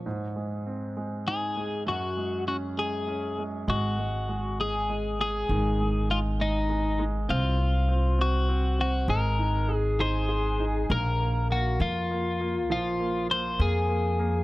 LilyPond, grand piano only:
\new Staff \with { instrumentName = "Grand piano" } { \time 6/8 \key aes \mixolydian \tempo 4. = 66 aes,8 aes8 c'8 aes8 ees'8 aes8 | ges,8 aes8 des'8 aes8 des'8 aes8 | aes8 aes8 aes8 aes8 aes8 aes8 | ees8 aes8 aes8 aes8 aes8 aes8 |
c'8 c'8 c'8 c'8 c'8 c'8 | aes8 ees'8 aes'8 ees'8 aes'8 ees'8 | bes8 bes8 bes8 bes8 bes8 bes8 | f8 bes8 bes8 bes8 bes8 bes8 | }